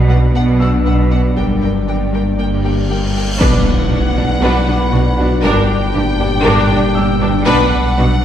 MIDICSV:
0, 0, Header, 1, 13, 480
1, 0, Start_track
1, 0, Key_signature, 2, "minor"
1, 0, Tempo, 508475
1, 1299, Time_signature, 4, 2, 24, 8
1, 7787, End_track
2, 0, Start_track
2, 0, Title_t, "Grand piano"
2, 0, Program_c, 0, 0
2, 0, Control_c, 0, 64, 127
2, 569, Note_on_c, 0, 88, 61
2, 1318, Control_c, 0, 64, 0
2, 1472, Control_c, 0, 64, 127
2, 1976, Note_off_c, 0, 88, 0
2, 3236, Control_c, 0, 64, 0
2, 3403, Control_c, 0, 64, 127
2, 4177, Note_on_c, 0, 71, 47
2, 4185, Note_on_c, 0, 83, 65
2, 5158, Control_c, 0, 64, 0
2, 5290, Control_c, 0, 64, 127
2, 5580, Note_off_c, 0, 71, 0
2, 5584, Note_off_c, 0, 83, 0
2, 6561, Note_on_c, 0, 88, 64
2, 7077, Control_c, 0, 64, 0
2, 7251, Control_c, 0, 64, 127
2, 7787, Note_off_c, 0, 88, 0
2, 7787, End_track
3, 0, Start_track
3, 0, Title_t, "Violin section"
3, 0, Program_c, 1, 48
3, 87, Note_on_c, 1, 78, 55
3, 163, Note_off_c, 1, 78, 0
3, 330, Note_on_c, 1, 78, 68
3, 405, Note_off_c, 1, 78, 0
3, 575, Note_on_c, 1, 78, 57
3, 650, Note_off_c, 1, 78, 0
3, 806, Note_on_c, 1, 78, 55
3, 882, Note_off_c, 1, 78, 0
3, 1047, Note_on_c, 1, 78, 54
3, 1123, Note_off_c, 1, 78, 0
3, 1292, Note_on_c, 1, 79, 57
3, 1367, Note_off_c, 1, 79, 0
3, 1527, Note_on_c, 1, 79, 45
3, 1603, Note_off_c, 1, 79, 0
3, 1776, Note_on_c, 1, 79, 49
3, 1852, Note_off_c, 1, 79, 0
3, 2017, Note_on_c, 1, 79, 45
3, 2092, Note_off_c, 1, 79, 0
3, 2256, Note_on_c, 1, 79, 56
3, 2331, Note_off_c, 1, 79, 0
3, 2495, Note_on_c, 1, 79, 50
3, 2571, Note_off_c, 1, 79, 0
3, 2741, Note_on_c, 1, 79, 49
3, 2817, Note_off_c, 1, 79, 0
3, 2981, Note_on_c, 1, 79, 54
3, 3056, Note_off_c, 1, 79, 0
3, 3218, Note_on_c, 1, 78, 75
3, 5101, Note_off_c, 1, 78, 0
3, 5135, Note_on_c, 1, 79, 80
3, 7057, Note_off_c, 1, 79, 0
3, 7058, Note_on_c, 1, 78, 88
3, 7787, Note_off_c, 1, 78, 0
3, 7787, End_track
4, 0, Start_track
4, 0, Title_t, "Violin section"
4, 0, Program_c, 2, 48
4, 84, Note_on_c, 2, 71, 61
4, 159, Note_off_c, 2, 71, 0
4, 331, Note_on_c, 2, 71, 61
4, 406, Note_off_c, 2, 71, 0
4, 569, Note_on_c, 2, 71, 49
4, 645, Note_off_c, 2, 71, 0
4, 817, Note_on_c, 2, 71, 54
4, 893, Note_off_c, 2, 71, 0
4, 1052, Note_on_c, 2, 71, 47
4, 1128, Note_off_c, 2, 71, 0
4, 1297, Note_on_c, 2, 70, 59
4, 1373, Note_off_c, 2, 70, 0
4, 1542, Note_on_c, 2, 70, 52
4, 1618, Note_off_c, 2, 70, 0
4, 1787, Note_on_c, 2, 70, 49
4, 1863, Note_off_c, 2, 70, 0
4, 2022, Note_on_c, 2, 70, 52
4, 2098, Note_off_c, 2, 70, 0
4, 2253, Note_on_c, 2, 70, 50
4, 2329, Note_off_c, 2, 70, 0
4, 2494, Note_on_c, 2, 70, 48
4, 2569, Note_off_c, 2, 70, 0
4, 2736, Note_on_c, 2, 70, 51
4, 2812, Note_off_c, 2, 70, 0
4, 2978, Note_on_c, 2, 70, 49
4, 3053, Note_off_c, 2, 70, 0
4, 3206, Note_on_c, 2, 71, 86
4, 3435, Note_off_c, 2, 71, 0
4, 3698, Note_on_c, 2, 66, 58
4, 3774, Note_off_c, 2, 66, 0
4, 3944, Note_on_c, 2, 62, 68
4, 4019, Note_off_c, 2, 62, 0
4, 4177, Note_on_c, 2, 71, 81
4, 4401, Note_off_c, 2, 71, 0
4, 4420, Note_on_c, 2, 62, 60
4, 4495, Note_off_c, 2, 62, 0
4, 4644, Note_on_c, 2, 66, 68
4, 4720, Note_off_c, 2, 66, 0
4, 4887, Note_on_c, 2, 62, 65
4, 4962, Note_off_c, 2, 62, 0
4, 5127, Note_on_c, 2, 70, 96
4, 5356, Note_off_c, 2, 70, 0
4, 5609, Note_on_c, 2, 67, 73
4, 5685, Note_off_c, 2, 67, 0
4, 5845, Note_on_c, 2, 62, 76
4, 5921, Note_off_c, 2, 62, 0
4, 6080, Note_on_c, 2, 70, 102
4, 6312, Note_off_c, 2, 70, 0
4, 6331, Note_on_c, 2, 62, 78
4, 6406, Note_off_c, 2, 62, 0
4, 6574, Note_on_c, 2, 67, 82
4, 6649, Note_off_c, 2, 67, 0
4, 6819, Note_on_c, 2, 62, 88
4, 6894, Note_off_c, 2, 62, 0
4, 7055, Note_on_c, 2, 71, 127
4, 7280, Note_off_c, 2, 71, 0
4, 7537, Note_on_c, 2, 66, 78
4, 7613, Note_off_c, 2, 66, 0
4, 7787, End_track
5, 0, Start_track
5, 0, Title_t, "French horn section"
5, 0, Program_c, 3, 60
5, 0, Note_on_c, 3, 62, 74
5, 0, Note_on_c, 3, 71, 85
5, 1262, Note_off_c, 3, 71, 0
5, 1297, Note_on_c, 3, 70, 66
5, 2942, Note_off_c, 3, 62, 0
5, 2945, Note_off_c, 3, 70, 0
5, 3231, Note_on_c, 3, 62, 89
5, 3235, Note_on_c, 3, 71, 77
5, 5109, Note_off_c, 3, 71, 0
5, 5135, Note_on_c, 3, 67, 93
5, 7019, Note_off_c, 3, 67, 0
5, 7027, Note_off_c, 3, 62, 0
5, 7049, Note_on_c, 3, 71, 100
5, 7052, Note_on_c, 3, 62, 106
5, 7787, Note_off_c, 3, 62, 0
5, 7787, Note_off_c, 3, 71, 0
5, 7787, End_track
6, 0, Start_track
6, 0, Title_t, "Viola section"
6, 0, Program_c, 4, 48
6, 97, Note_on_c, 4, 62, 61
6, 172, Note_off_c, 4, 62, 0
6, 333, Note_on_c, 4, 62, 60
6, 408, Note_off_c, 4, 62, 0
6, 567, Note_on_c, 4, 62, 53
6, 642, Note_off_c, 4, 62, 0
6, 811, Note_on_c, 4, 62, 50
6, 887, Note_off_c, 4, 62, 0
6, 1052, Note_on_c, 4, 62, 53
6, 1128, Note_off_c, 4, 62, 0
6, 1293, Note_on_c, 4, 62, 58
6, 1369, Note_off_c, 4, 62, 0
6, 1532, Note_on_c, 4, 62, 50
6, 1607, Note_off_c, 4, 62, 0
6, 1768, Note_on_c, 4, 62, 52
6, 1843, Note_off_c, 4, 62, 0
6, 2010, Note_on_c, 4, 62, 48
6, 2085, Note_off_c, 4, 62, 0
6, 2252, Note_on_c, 4, 62, 54
6, 2327, Note_off_c, 4, 62, 0
6, 2491, Note_on_c, 4, 62, 45
6, 2566, Note_off_c, 4, 62, 0
6, 2731, Note_on_c, 4, 62, 49
6, 2807, Note_off_c, 4, 62, 0
6, 2967, Note_on_c, 4, 62, 52
6, 3043, Note_off_c, 4, 62, 0
6, 3205, Note_on_c, 4, 62, 95
6, 3435, Note_off_c, 4, 62, 0
6, 3697, Note_on_c, 4, 62, 65
6, 3773, Note_off_c, 4, 62, 0
6, 3940, Note_on_c, 4, 62, 67
6, 4015, Note_off_c, 4, 62, 0
6, 4183, Note_on_c, 4, 62, 90
6, 4404, Note_off_c, 4, 62, 0
6, 4418, Note_on_c, 4, 62, 70
6, 4493, Note_off_c, 4, 62, 0
6, 4662, Note_on_c, 4, 62, 59
6, 4737, Note_off_c, 4, 62, 0
6, 4908, Note_on_c, 4, 62, 86
6, 4984, Note_off_c, 4, 62, 0
6, 5143, Note_on_c, 4, 62, 100
6, 5365, Note_off_c, 4, 62, 0
6, 5620, Note_on_c, 4, 62, 80
6, 5696, Note_off_c, 4, 62, 0
6, 5858, Note_on_c, 4, 62, 81
6, 5933, Note_off_c, 4, 62, 0
6, 6088, Note_on_c, 4, 62, 126
6, 6316, Note_off_c, 4, 62, 0
6, 6344, Note_on_c, 4, 62, 77
6, 6420, Note_off_c, 4, 62, 0
6, 6579, Note_on_c, 4, 62, 86
6, 6655, Note_off_c, 4, 62, 0
6, 6820, Note_on_c, 4, 62, 95
6, 6895, Note_off_c, 4, 62, 0
6, 7050, Note_on_c, 4, 62, 120
6, 7278, Note_off_c, 4, 62, 0
6, 7534, Note_on_c, 4, 62, 68
6, 7609, Note_off_c, 4, 62, 0
6, 7787, End_track
7, 0, Start_track
7, 0, Title_t, "Synth pluck"
7, 0, Program_c, 5, 84
7, 94, Note_on_c, 5, 59, 92
7, 239, Note_off_c, 5, 59, 0
7, 334, Note_on_c, 5, 62, 58
7, 479, Note_off_c, 5, 62, 0
7, 573, Note_on_c, 5, 71, 60
7, 719, Note_off_c, 5, 71, 0
7, 811, Note_on_c, 5, 59, 97
7, 957, Note_off_c, 5, 59, 0
7, 1291, Note_on_c, 5, 55, 104
7, 1437, Note_off_c, 5, 55, 0
7, 1772, Note_on_c, 5, 62, 60
7, 1918, Note_off_c, 5, 62, 0
7, 2005, Note_on_c, 5, 55, 88
7, 2153, Note_off_c, 5, 55, 0
7, 2256, Note_on_c, 5, 58, 65
7, 2401, Note_off_c, 5, 58, 0
7, 2495, Note_on_c, 5, 67, 71
7, 2640, Note_off_c, 5, 67, 0
7, 2736, Note_on_c, 5, 55, 91
7, 2881, Note_off_c, 5, 55, 0
7, 3216, Note_on_c, 5, 59, 106
7, 3361, Note_off_c, 5, 59, 0
7, 3703, Note_on_c, 5, 62, 76
7, 3846, Note_off_c, 5, 62, 0
7, 3942, Note_on_c, 5, 62, 74
7, 4085, Note_off_c, 5, 62, 0
7, 4185, Note_on_c, 5, 59, 106
7, 4327, Note_off_c, 5, 59, 0
7, 4426, Note_on_c, 5, 62, 72
7, 4568, Note_off_c, 5, 62, 0
7, 4664, Note_on_c, 5, 62, 80
7, 4807, Note_off_c, 5, 62, 0
7, 4900, Note_on_c, 5, 66, 79
7, 5043, Note_off_c, 5, 66, 0
7, 5132, Note_on_c, 5, 55, 104
7, 5278, Note_off_c, 5, 55, 0
7, 5617, Note_on_c, 5, 58, 80
7, 5762, Note_off_c, 5, 58, 0
7, 5860, Note_on_c, 5, 58, 72
7, 6004, Note_off_c, 5, 58, 0
7, 6103, Note_on_c, 5, 55, 106
7, 6246, Note_off_c, 5, 55, 0
7, 6342, Note_on_c, 5, 58, 82
7, 6485, Note_off_c, 5, 58, 0
7, 6581, Note_on_c, 5, 58, 81
7, 6725, Note_off_c, 5, 58, 0
7, 6822, Note_on_c, 5, 62, 92
7, 6965, Note_off_c, 5, 62, 0
7, 7058, Note_on_c, 5, 59, 112
7, 7202, Note_off_c, 5, 59, 0
7, 7541, Note_on_c, 5, 62, 77
7, 7685, Note_off_c, 5, 62, 0
7, 7787, End_track
8, 0, Start_track
8, 0, Title_t, "Ambient pad"
8, 0, Program_c, 6, 92
8, 0, Note_on_c, 6, 54, 75
8, 0, Note_on_c, 6, 59, 76
8, 0, Note_on_c, 6, 62, 77
8, 0, Note_on_c, 6, 74, 77
8, 1301, Note_on_c, 6, 55, 67
8, 1302, Note_off_c, 6, 59, 0
8, 1303, Note_off_c, 6, 54, 0
8, 1303, Note_on_c, 6, 58, 73
8, 3186, Note_off_c, 6, 62, 0
8, 3186, Note_off_c, 6, 74, 0
8, 3217, Note_on_c, 6, 54, 85
8, 3218, Note_on_c, 6, 62, 83
8, 3219, Note_on_c, 6, 59, 83
8, 3220, Note_off_c, 6, 55, 0
8, 3221, Note_off_c, 6, 58, 0
8, 3221, Note_on_c, 6, 74, 79
8, 5100, Note_off_c, 6, 54, 0
8, 5101, Note_off_c, 6, 59, 0
8, 5134, Note_on_c, 6, 55, 85
8, 5136, Note_on_c, 6, 46, 88
8, 7056, Note_off_c, 6, 55, 0
8, 7058, Note_off_c, 6, 46, 0
8, 7070, Note_on_c, 6, 54, 92
8, 7072, Note_on_c, 6, 59, 92
8, 7787, Note_off_c, 6, 54, 0
8, 7787, Note_off_c, 6, 59, 0
8, 7787, Note_off_c, 6, 62, 0
8, 7787, Note_off_c, 6, 74, 0
8, 7787, End_track
9, 0, Start_track
9, 0, Title_t, "Cello section"
9, 0, Program_c, 7, 48
9, 0, Note_on_c, 7, 47, 73
9, 281, Note_off_c, 7, 47, 0
9, 335, Note_on_c, 7, 47, 70
9, 760, Note_off_c, 7, 47, 0
9, 818, Note_on_c, 7, 47, 62
9, 1242, Note_off_c, 7, 47, 0
9, 1293, Note_on_c, 7, 43, 63
9, 1719, Note_off_c, 7, 43, 0
9, 1774, Note_on_c, 7, 43, 64
9, 2200, Note_off_c, 7, 43, 0
9, 2257, Note_on_c, 7, 43, 62
9, 2681, Note_off_c, 7, 43, 0
9, 2739, Note_on_c, 7, 43, 61
9, 3162, Note_off_c, 7, 43, 0
9, 3218, Note_on_c, 7, 47, 79
9, 3293, Note_off_c, 7, 47, 0
9, 3696, Note_on_c, 7, 47, 63
9, 3772, Note_off_c, 7, 47, 0
9, 3937, Note_on_c, 7, 47, 61
9, 4013, Note_off_c, 7, 47, 0
9, 4174, Note_on_c, 7, 47, 91
9, 4250, Note_off_c, 7, 47, 0
9, 4413, Note_on_c, 7, 47, 57
9, 4489, Note_off_c, 7, 47, 0
9, 4652, Note_on_c, 7, 47, 64
9, 4727, Note_off_c, 7, 47, 0
9, 4899, Note_on_c, 7, 47, 68
9, 4974, Note_off_c, 7, 47, 0
9, 5138, Note_on_c, 7, 43, 92
9, 5214, Note_off_c, 7, 43, 0
9, 5615, Note_on_c, 7, 43, 82
9, 5690, Note_off_c, 7, 43, 0
9, 5857, Note_on_c, 7, 43, 76
9, 5933, Note_off_c, 7, 43, 0
9, 6102, Note_on_c, 7, 43, 120
9, 6177, Note_off_c, 7, 43, 0
9, 6342, Note_on_c, 7, 43, 74
9, 6417, Note_off_c, 7, 43, 0
9, 6583, Note_on_c, 7, 43, 73
9, 6659, Note_off_c, 7, 43, 0
9, 6821, Note_on_c, 7, 43, 84
9, 6897, Note_off_c, 7, 43, 0
9, 7058, Note_on_c, 7, 47, 109
9, 7133, Note_off_c, 7, 47, 0
9, 7535, Note_on_c, 7, 47, 90
9, 7610, Note_off_c, 7, 47, 0
9, 7787, End_track
10, 0, Start_track
10, 0, Title_t, "Double bass section"
10, 0, Program_c, 8, 48
10, 0, Note_on_c, 8, 35, 76
10, 282, Note_off_c, 8, 35, 0
10, 335, Note_on_c, 8, 35, 67
10, 761, Note_off_c, 8, 35, 0
10, 816, Note_on_c, 8, 35, 69
10, 1241, Note_off_c, 8, 35, 0
10, 1299, Note_on_c, 8, 31, 63
10, 1722, Note_off_c, 8, 31, 0
10, 1776, Note_on_c, 8, 31, 58
10, 2201, Note_off_c, 8, 31, 0
10, 2259, Note_on_c, 8, 31, 66
10, 2682, Note_off_c, 8, 31, 0
10, 2741, Note_on_c, 8, 31, 58
10, 3163, Note_off_c, 8, 31, 0
10, 3219, Note_on_c, 8, 35, 95
10, 3294, Note_off_c, 8, 35, 0
10, 3704, Note_on_c, 8, 35, 61
10, 3779, Note_off_c, 8, 35, 0
10, 3944, Note_on_c, 8, 35, 60
10, 4020, Note_off_c, 8, 35, 0
10, 4179, Note_on_c, 8, 35, 85
10, 4255, Note_off_c, 8, 35, 0
10, 4423, Note_on_c, 8, 35, 61
10, 4499, Note_off_c, 8, 35, 0
10, 4659, Note_on_c, 8, 35, 75
10, 4734, Note_off_c, 8, 35, 0
10, 4900, Note_on_c, 8, 35, 64
10, 4975, Note_off_c, 8, 35, 0
10, 5141, Note_on_c, 8, 31, 100
10, 5216, Note_off_c, 8, 31, 0
10, 5620, Note_on_c, 8, 31, 74
10, 5696, Note_off_c, 8, 31, 0
10, 5862, Note_on_c, 8, 31, 76
10, 5938, Note_off_c, 8, 31, 0
10, 6097, Note_on_c, 8, 31, 107
10, 6172, Note_off_c, 8, 31, 0
10, 6341, Note_on_c, 8, 31, 78
10, 6416, Note_off_c, 8, 31, 0
10, 6574, Note_on_c, 8, 31, 83
10, 6649, Note_off_c, 8, 31, 0
10, 6815, Note_on_c, 8, 31, 75
10, 6891, Note_off_c, 8, 31, 0
10, 7052, Note_on_c, 8, 35, 113
10, 7128, Note_off_c, 8, 35, 0
10, 7530, Note_on_c, 8, 35, 85
10, 7605, Note_off_c, 8, 35, 0
10, 7787, End_track
11, 0, Start_track
11, 0, Title_t, "Sub bass"
11, 0, Program_c, 10, 38
11, 0, Note_on_c, 10, 35, 88
11, 1297, Note_on_c, 10, 31, 80
11, 1311, Note_off_c, 10, 35, 0
11, 3218, Note_off_c, 10, 31, 0
11, 3225, Note_on_c, 10, 35, 88
11, 5138, Note_on_c, 10, 31, 90
11, 5152, Note_off_c, 10, 35, 0
11, 7061, Note_on_c, 10, 35, 91
11, 7075, Note_off_c, 10, 31, 0
11, 7787, Note_off_c, 10, 35, 0
11, 7787, End_track
12, 0, Start_track
12, 0, Title_t, "Cymbal swell"
12, 0, Program_c, 11, 119
12, 1296, Note_on_c, 11, 60, 51
12, 3217, Note_off_c, 11, 60, 0
12, 7787, End_track
13, 0, Start_track
13, 0, Title_t, "Impact"
13, 0, Program_c, 12, 103
13, 3218, Note_on_c, 12, 60, 86
13, 5138, Note_off_c, 12, 60, 0
13, 7787, End_track
0, 0, End_of_file